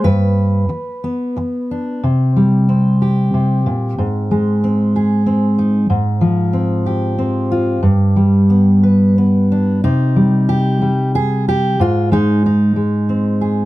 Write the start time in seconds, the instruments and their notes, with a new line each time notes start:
0.04 steel-string acoustic guitar G2 B4
0.69 muted steel-string acoustic guitar stroke
1.04 steel-string acoustic guitar B3
1.36 muted steel-string acoustic guitar stroke
1.71 steel-string acoustic guitar D4
2.03 steel-string acoustic guitar C3
2.36 steel-string acoustic guitar G3
2.69 steel-string acoustic guitar C4
3.02 steel-string acoustic guitar G4
3.34 steel-string acoustic guitar C3
3.66 steel-string acoustic guitar A#2
3.98 steel-string acoustic guitar G#2
4.31 steel-string acoustic guitar G#3
4.64 steel-string acoustic guitar C4
4.96 steel-string acoustic guitar G#4
5.26 steel-string acoustic guitar C4
5.58 steel-string acoustic guitar D#4
5.90 steel-string acoustic guitar G#2
6.21 steel-string acoustic guitar F3
6.53 steel-string acoustic guitar C4
6.86 steel-string acoustic guitar G4
7.18 steel-string acoustic guitar C4
7.52 steel-string acoustic guitar F4
7.83 steel-string acoustic guitar G2
8.16 steel-string acoustic guitar G3
8.50 steel-string acoustic guitar B3
8.83 steel-string acoustic guitar B4
9.18 steel-string acoustic guitar B3
9.52 steel-string acoustic guitar D4
9.84 steel-string acoustic guitar C3 D#4
10.16 steel-string acoustic guitar G3
10.49 steel-string acoustic guitar G4
10.82 steel-string acoustic guitar G3
11.15 steel-string acoustic guitar G#4
11.49 steel-string acoustic guitar G4
11.80 steel-string acoustic guitar G#2 F4
12.12 steel-string acoustic guitar G#3 D#4
12.46 steel-string acoustic guitar D#4
12.76 steel-string acoustic guitar G#3
13.09 steel-string acoustic guitar C4
13.41 steel-string acoustic guitar G#4